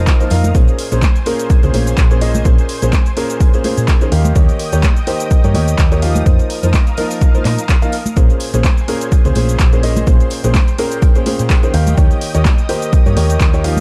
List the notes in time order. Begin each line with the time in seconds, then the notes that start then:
Already playing: F3 A#3 D#4 F4 A#4 C5 F5 D#6
0.06 kick, clap, closed hi-hat, tambourine, shaker
0.20 F3 A#3 D#4 F4 C5, closed hi-hat, tambourine, shaker
0.30 F2 A#2 A#3 D#4 F4 F5, open hi-hat, tambourine
0.44 closed hi-hat, tambourine, high conga, shaker
0.55 A#1 A#2 A#3 C#4 G#4 C5 G#5, kick, closed hi-hat, tambourine, shaker
0.68 closed hi-hat, tambourine, shaker
0.79 open hi-hat, tambourine
0.92 A#1 A#2 A#3 C#4 G#4 C5, closed hi-hat, tambourine, shaker
1.02 kick, clap, closed hi-hat, tambourine, high conga, shaker
1.16 closed hi-hat, tambourine, shaker
1.26 A#2 A#3 C#4 G#4 A#4, open hi-hat, tambourine
1.40 closed hi-hat, tambourine, shaker
1.50 kick, closed hi-hat, tambourine, shaker
1.63 C#2 A#2 A#3 C#4 G#4 C5, closed hi-hat, tambourine, shaker
1.73 A#1 A#2 A#3 C#4 G#4 C5, open hi-hat, tambourine, high conga
1.87 closed hi-hat, tambourine, shaker
1.98 kick, clap, closed hi-hat, tambourine, shaker
2.10 A#2 A#3 C#4 G#4 C5, closed hi-hat, tambourine, shaker
2.21 A#2 A#3 C#4 G#4 D#5, open hi-hat, tambourine
2.35 closed hi-hat, tambourine, high conga, shaker
2.45 A#1 A#2 A#3 C#4 G#4 C5, kick, closed hi-hat, tambourine, shaker
2.58 closed hi-hat, tambourine, shaker
2.69 open hi-hat, tambourine
2.82 A#1 A#2 A#3 C#4 G#4 C5, closed hi-hat, tambourine, shaker
2.93 kick, clap, closed hi-hat, tambourine, high conga, shaker
3.06 closed hi-hat, tambourine, shaker
3.17 A#2 A#3 C#4 G#4 A#4, open hi-hat, tambourine
3.30 closed hi-hat, tambourine, shaker
3.40 kick, closed hi-hat, tambourine, shaker
3.53 A#2 A#3 C#4 G#4 C5, closed hi-hat, tambourine, shaker
3.64 A#2 A#3 C#4 G#4 C5, open hi-hat, tambourine, high conga
3.77 A#2, closed hi-hat, tambourine, shaker
3.88 kick, clap, closed hi-hat, tambourine, shaker
4.01 D#3 A#3 C#4 G#4 C5, closed hi-hat, tambourine, shaker
4.12 D#2 D#3 A#3 D#4 G4 D#5 F5 G5 D#6, open hi-hat, tambourine
4.25 closed hi-hat, tambourine, high conga, shaker
4.35 D#2 D#3 A#3 D#4 G4 C#5, kick, closed hi-hat, tambourine, shaker
4.49 closed hi-hat, tambourine, shaker
4.59 open hi-hat, tambourine
4.72 D#2 D#3 A#3 D#4 G4 C#5, closed hi-hat, tambourine, shaker
4.83 kick, clap, closed hi-hat, tambourine, high conga, shaker
4.97 closed hi-hat, tambourine, shaker
5.07 D#3 A#3 D#4 G4 C5, open hi-hat, tambourine
5.20 closed hi-hat, tambourine, shaker
5.31 kick, closed hi-hat, tambourine, shaker
5.44 G2 D#3 A#3 D#4 G4 C#5, closed hi-hat, tambourine, shaker
5.54 D#2 D#3 A#3 D#4 G4 C#5, open hi-hat, tambourine, high conga
5.68 closed hi-hat, tambourine, shaker
5.78 D#2, kick, clap, closed hi-hat, tambourine, shaker
5.92 D#3 A#3 D#4 G4 C#5, closed hi-hat, tambourine, shaker
6.02 F3 A#3 D#4 G4 F5, open hi-hat, tambourine
6.15 closed hi-hat, tambourine, high conga, shaker
6.26 F2 F3 A#3 D#4 A#4 C5 F5, kick, closed hi-hat, tambourine, shaker
6.39 closed hi-hat, tambourine, shaker
6.50 open hi-hat, tambourine
6.63 F2 F3 A#3 D#4 F4 C5, closed hi-hat, tambourine, shaker
6.73 kick, clap, closed hi-hat, tambourine, high conga, shaker
6.87 closed hi-hat, tambourine, shaker
6.97 F3 A#3 D#4 F4 A#4, open hi-hat, tambourine
7.11 open hi-hat, tambourine, shaker
7.21 kick, closed hi-hat, tambourine, shaker
7.34 F3 A#3 D#4 F4 C5, closed hi-hat, tambourine, shaker
7.45 A#2 F3 A#3 D#4 F4 D#5, clap, open hi-hat, tambourine, high conga
7.58 closed hi-hat, tambourine, shaker
7.69 kick, clap, closed hi-hat, tambourine, shaker
7.82 F3 A#3 D#4 F4 F5, closed hi-hat, tambourine, shaker
7.92 open hi-hat, tambourine
8.06 closed hi-hat, tambourine, high conga, shaker
8.16 A#1 A#2 A#3 C#4 G#4 C5 G#5, kick, closed hi-hat, tambourine, shaker
8.29 closed hi-hat, tambourine, shaker
8.40 open hi-hat, tambourine
8.53 A#1 A#2 A#3 C#4 G#4 C5, closed hi-hat, tambourine, shaker
8.64 kick, clap, closed hi-hat, tambourine, high conga, shaker
8.77 closed hi-hat, tambourine, shaker
8.88 A#2 A#3 C#4 G#4 A#4, open hi-hat, tambourine
9.01 closed hi-hat, tambourine, shaker
9.12 kick, closed hi-hat, tambourine, shaker
9.25 C#2 A#2 A#3 C#4 G#4 C5, closed hi-hat, tambourine, shaker
9.35 A#1 A#2 A#3 C#4 G#4 C5, open hi-hat, tambourine, high conga
9.49 closed hi-hat, tambourine, shaker
9.59 A#1, kick, clap, closed hi-hat, tambourine, shaker
9.73 A#2 A#3 C#4 G#4 C5, closed hi-hat, tambourine, shaker
9.83 A#2 A#3 C#4 G#4 D#5, open hi-hat, tambourine
9.97 closed hi-hat, tambourine, high conga, shaker
10.07 A#1 A#2 A#3 C#4 G#4 C5 G5, kick, closed hi-hat, tambourine, shaker
10.20 closed hi-hat, tambourine, shaker
10.30 open hi-hat, tambourine
10.44 A#1 A#2 A#3 C#4 G#4 C5, closed hi-hat, tambourine, shaker
10.54 kick, clap, closed hi-hat, tambourine, high conga, shaker
10.67 closed hi-hat, tambourine, shaker
10.78 A#2 A#3 C#4 G#4 A#4, open hi-hat, tambourine
10.91 closed hi-hat, tambourine, shaker
11.02 kick, closed hi-hat, tambourine, shaker
11.15 A#2 A#3 C#4 G#4 C5, closed hi-hat, tambourine, shaker
11.26 A#2 A#3 C#4 G#4 C5, open hi-hat, tambourine, high conga
11.39 A#2, closed hi-hat, tambourine, shaker
11.50 kick, clap, closed hi-hat, tambourine, shaker
11.63 D#3 A#3 C#4 G#4 C5, closed hi-hat, tambourine, shaker
11.74 D#2 D#3 A#3 D#4 G4 D#5 F5 D#6, open hi-hat, tambourine
11.87 closed hi-hat, tambourine, high conga, shaker
11.98 D#3 A#3 D#4 G4 C#5, kick, closed hi-hat, tambourine, shaker
12.11 closed hi-hat, tambourine, shaker
12.21 open hi-hat, tambourine
12.34 D#2 D#3 A#3 D#4 G4 C#5, closed hi-hat, tambourine, shaker
12.45 kick, clap, closed hi-hat, tambourine, high conga, shaker
12.58 closed hi-hat, tambourine, shaker
12.69 D#3 A#3 D#4 G4 C5, open hi-hat, tambourine
12.82 closed hi-hat, tambourine, shaker
12.93 kick, closed hi-hat, tambourine, shaker
13.06 G2 D#3 A#3 D#4 G4 C#5, closed hi-hat, tambourine, shaker
13.17 D#2 D#3 A#3 D#4 G4 C#5, open hi-hat, tambourine, high conga
13.29 closed hi-hat, tambourine, shaker
13.40 D#2, kick, clap, closed hi-hat, tambourine, shaker
13.54 D#3 A#3 D#4 G4 C#5, closed hi-hat, tambourine, shaker
13.64 F3 A#3 D#4 G4 F5, open hi-hat, tambourine
13.77 high conga